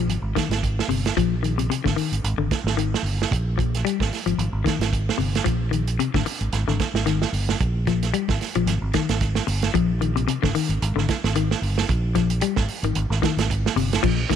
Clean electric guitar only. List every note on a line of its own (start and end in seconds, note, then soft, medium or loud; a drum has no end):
0.00 0.14 F3 medium
0.35 0.53 D#3 medium
0.89 1.06 C3 medium
1.17 1.34 F3 medium
1.43 1.52 D#3 medium
1.58 1.66 C3 medium
1.70 1.79 C3 medium
1.84 1.92 D3 medium
1.96 2.13 D#3 medium
2.38 2.55 D3 medium
2.77 2.94 D#3 medium
3.58 3.75 F3 medium
3.85 4.02 G3 medium
4.26 4.43 F3 medium
4.64 4.81 D#3 medium
5.18 5.35 C3 medium
5.44 5.62 F3 medium
5.71 5.81 D#3 medium
5.99 6.09 C3 medium
6.14 6.22 D3 medium
6.26 muted clean electric guitar stroke medium
6.68 6.84 D3 medium
7.06 7.23 D#3 medium
7.87 8.04 F3 medium
8.14 8.30 G3 medium
8.56 8.72 F3 medium
8.94 9.11 D#3 medium
9.47 muted clean electric guitar stroke medium
9.74 9.91 F3 medium
10.01 10.10 D#3 medium
10.16 10.23 C3 medium
10.28 10.37 C3 medium
10.43 10.50 D3 medium
10.55 10.72 D#3 medium
10.96 11.13 D3 medium
11.36 11.52 D#3 medium
12.15 12.32 F3 medium
12.42 12.59 G3 medium
12.84 13.01 D#3 medium
13.22 13.39 D#3 medium
13.76 13.93 C3 medium
14.03 14.20 F3 loud
14.30 14.36 D#3 medium